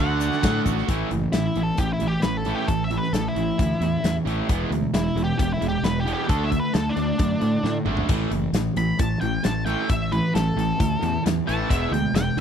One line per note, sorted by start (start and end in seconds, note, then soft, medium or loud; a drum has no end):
0.00 0.29 D2 medium
0.00 0.88 D3 medium
0.00 0.87 A3 loud
0.00 0.87 D4 medium
0.00 0.87 D4 loud
0.00 0.87 F#4 medium
0.00 0.86 A4 medium
0.00 0.62 F#5 loud
0.21 0.88 D4 medium
0.21 shaker loud
0.33 snare soft
0.33 shaker soft
0.43 0.59 A2 medium
0.43 0.88 A3 medium
0.43 kick loud
0.43 snare loud
0.43 ride bell medium
0.43 shaker medium
0.66 0.81 A1 medium
0.66 0.88 F#4 medium
0.66 kick medium
0.66 shaker medium
0.78 snare soft
0.88 1.03 A1 medium
0.88 1.09 A2 medium
0.88 1.09 E3 medium
0.88 1.10 A3 medium
0.88 kick loud
0.88 closed hi-hat medium
1.11 1.25 F#1 medium
1.11 1.31 A2 medium
1.11 1.31 E3 medium
1.11 closed hi-hat medium
1.32 1.47 A1 medium
1.32 1.54 A2 medium
1.32 1.54 E3 medium
1.32 1.62 E4 medium
1.32 snare loud
1.32 closed hi-hat loud
1.55 1.70 A1 medium
1.55 1.76 A2 medium
1.55 1.76 E3 medium
1.55 closed hi-hat medium
1.63 1.78 A4 medium
1.77 1.93 A1 medium
1.77 1.98 A2 medium
1.77 1.99 E3 medium
1.77 1.93 G4 loud
1.77 kick loud
1.77 closed hi-hat medium
1.93 2.08 E4 medium
2.00 2.16 A1 medium
2.00 2.21 A2 medium
2.00 2.22 E3 medium
2.00 closed hi-hat medium
2.08 2.22 G4 medium
2.22 2.53 A1 medium
2.22 2.44 A2 medium
2.22 2.44 E3 medium
2.22 2.37 B4 medium
2.22 snare loud
2.22 closed hi-hat medium
2.37 2.52 A4 medium
2.45 2.67 A2 medium
2.45 2.67 E3 loud
2.45 2.67 A3 loud
2.45 closed hi-hat medium
2.55 2.68 G4 medium
2.68 2.97 A1 medium
2.68 2.88 A2 medium
2.68 2.88 E3 medium
2.68 2.82 A4 medium
2.68 kick loud
2.68 closed hi-hat medium
2.84 2.98 E5 medium
2.91 3.11 A2 medium
2.91 3.11 E3 medium
2.91 closed hi-hat medium
2.97 3.13 B4 medium
3.03 snare soft
3.13 3.27 A1 medium
3.13 3.34 A2 medium
3.13 3.34 E3 medium
3.13 3.28 A4 medium
3.13 snare loud
3.13 closed hi-hat medium
3.28 4.16 E4 medium
3.35 3.50 A1 medium
3.35 3.56 A2 medium
3.35 3.56 E3 medium
3.35 closed hi-hat medium
3.58 3.73 D2 medium
3.58 3.78 A2 medium
3.58 3.79 E3 medium
3.58 kick loud
3.58 closed hi-hat medium
3.80 3.95 E2 medium
3.80 4.01 A2 medium
3.80 4.02 E3 medium
3.80 closed hi-hat medium
4.03 4.18 E2 medium
4.03 4.24 A2 medium
4.03 4.24 E3 medium
4.03 snare loud
4.03 closed hi-hat loud
4.25 4.40 A1 medium
4.25 4.47 A2 medium
4.25 4.47 E3 loud
4.25 4.47 A3 loud
4.25 closed hi-hat medium
4.49 4.64 E1 medium
4.49 4.70 E2 medium
4.49 4.70 B2 loud
4.49 4.70 E3 medium
4.49 4.70 G#3 medium
4.49 4.70 B3 medium
4.49 kick loud
4.49 closed hi-hat loud
4.70 4.85 D2 medium
4.70 4.92 E2 medium
4.70 4.92 B2 medium
4.70 4.92 E3 medium
4.70 4.92 G#3 medium
4.70 closed hi-hat medium
4.93 5.08 E1 medium
4.93 5.14 E2 medium
4.93 5.14 B2 medium
4.93 5.14 E3 medium
4.93 5.14 G#3 medium
4.93 5.23 E4 medium
4.93 snare loud
4.93 closed hi-hat loud
5.15 5.30 E1 medium
5.15 5.37 E2 medium
5.15 5.37 B2 medium
5.15 5.36 E3 medium
5.15 5.37 G#3 medium
5.15 closed hi-hat medium
5.24 5.38 G4 medium
5.38 5.54 E1 medium
5.38 5.60 E2 medium
5.38 5.60 B2 medium
5.38 5.59 E3 medium
5.38 5.59 G#3 medium
5.38 5.53 G4 loud
5.38 kick loud
5.38 closed hi-hat medium
5.54 5.68 E4 medium
5.61 5.76 E1 medium
5.61 5.82 E2 medium
5.61 5.82 B2 medium
5.61 5.82 E3 medium
5.61 5.82 G#3 medium
5.61 closed hi-hat medium
5.68 5.83 G4 medium
5.83 6.12 E1 medium
5.83 6.05 E2 medium
5.83 6.05 B2 medium
5.83 6.04 E3 medium
5.83 6.04 G#3 medium
5.83 5.99 B4 medium
5.83 snare loud
5.83 closed hi-hat medium
6.00 6.12 G4 medium
6.05 6.28 E2 medium
6.05 6.28 B2 medium
6.05 6.27 E3 loud
6.05 6.28 G#3 loud
6.05 6.28 B3 loud
6.05 closed hi-hat medium
6.13 6.28 G4 medium
6.28 6.59 D2 medium
6.28 6.50 D3 medium
6.28 6.50 A3 medium
6.28 6.50 D4 loud
6.28 6.44 A4 medium
6.28 kick loud
6.28 closed hi-hat medium
6.44 6.59 E5 medium
6.51 6.72 D3 medium
6.51 6.72 A3 medium
6.51 kick medium
6.51 closed hi-hat medium
6.59 6.73 B4 medium
6.73 6.89 D2 medium
6.73 6.94 D3 medium
6.73 6.94 A3 medium
6.73 6.89 A4 medium
6.73 snare loud
6.73 closed hi-hat medium
6.89 7.77 D4 medium
6.96 7.11 D2 medium
6.96 7.17 D3 medium
6.96 7.17 A3 medium
6.96 closed hi-hat medium
7.19 7.34 F#2 medium
7.19 7.40 D3 medium
7.19 7.40 A3 medium
7.19 kick loud
7.19 closed hi-hat medium
7.41 7.56 A2 medium
7.41 7.62 D3 medium
7.41 7.62 A3 medium
7.41 closed hi-hat medium
7.63 7.78 A2 medium
7.63 7.84 D3 medium
7.63 7.84 A3 medium
7.63 snare medium
7.85 8.00 G#1 medium
7.85 8.07 D3 medium
7.85 8.07 A3 loud
7.85 8.08 D4 loud
7.85 mid tom medium
7.97 floor tom medium
8.08 8.24 A1 medium
8.08 8.30 A2 medium
8.08 8.30 E3 medium
8.08 8.31 A3 medium
8.08 kick loud
8.08 closed hi-hat loud
8.08 splash medium
8.31 8.46 F#1 medium
8.31 8.52 A2 medium
8.31 8.52 E3 medium
8.31 closed hi-hat medium
8.53 8.68 A1 medium
8.53 8.75 A2 medium
8.53 8.75 E3 medium
8.53 snare loud
8.53 closed hi-hat loud
8.76 8.91 A1 medium
8.76 8.98 A2 medium
8.76 8.98 E3 medium
8.76 8.99 B5 loud
8.76 closed hi-hat medium
8.99 9.14 A1 medium
8.99 9.20 A2 medium
8.99 9.20 E3 medium
8.99 9.20 A5 loud
8.99 kick loud
8.99 closed hi-hat loud
9.21 9.37 A1 medium
9.21 9.43 A2 medium
9.21 9.43 E3 medium
9.21 9.44 G5 medium
9.21 closed hi-hat medium
9.44 9.74 A1 medium
9.44 9.65 A2 medium
9.44 9.65 E3 medium
9.44 9.65 A5 medium
9.44 snare loud
9.44 closed hi-hat loud
9.66 9.87 A2 loud
9.66 9.88 E3 loud
9.66 9.88 A3 loud
9.66 9.89 G5 medium
9.66 closed hi-hat medium
9.89 10.19 A1 medium
9.89 10.10 A2 medium
9.89 10.10 E3 medium
9.89 10.12 E5 loud
9.89 kick loud
9.89 closed hi-hat medium
10.12 10.33 A2 medium
10.12 10.33 E3 medium
10.12 10.34 B4 medium
10.12 closed hi-hat medium
10.34 10.50 A1 medium
10.34 10.55 A2 medium
10.34 10.55 E3 medium
10.34 11.23 A4 medium
10.34 snare loud
10.34 closed hi-hat medium
10.56 10.71 A1 loud
10.56 10.78 A2 medium
10.56 10.78 E3 medium
10.56 closed hi-hat medium
10.79 10.95 D2 medium
10.79 11.00 A2 medium
10.79 11.00 E3 medium
10.79 kick loud
10.79 closed hi-hat medium
11.02 11.17 E2 medium
11.02 11.23 A2 medium
11.02 11.23 E3 medium
11.02 closed hi-hat medium
11.26 11.40 E2 medium
11.26 11.46 A2 medium
11.26 11.46 E3 medium
11.26 snare loud
11.26 closed hi-hat loud
11.47 11.63 A1 medium
11.47 11.69 A2 medium
11.47 11.69 E3 loud
11.47 11.69 A3 loud
11.47 11.69 A5 loud
11.47 closed hi-hat medium
11.69 11.85 E1 medium
11.69 11.90 E2 medium
11.69 11.91 B2 medium
11.69 11.91 E3 medium
11.69 11.92 G#3 medium
11.69 11.92 B3 loud
11.69 11.92 E5 medium
11.69 kick loud
11.69 closed hi-hat loud
11.91 12.06 D2 medium
11.91 12.13 E2 medium
11.91 12.13 B2 medium
11.91 12.13 E3 medium
11.91 12.13 G#3 medium
11.91 12.15 G5 medium
11.91 closed hi-hat medium
12.13 12.28 E1 medium
12.13 12.35 E2 medium
12.13 12.35 B2 medium
12.13 12.35 E3 medium
12.13 12.35 G#3 medium
12.13 12.38 G5 medium
12.13 snare loud
12.13 closed hi-hat loud
12.37 12.41 E1 medium
12.37 12.41 E2 medium
12.37 12.41 E3 medium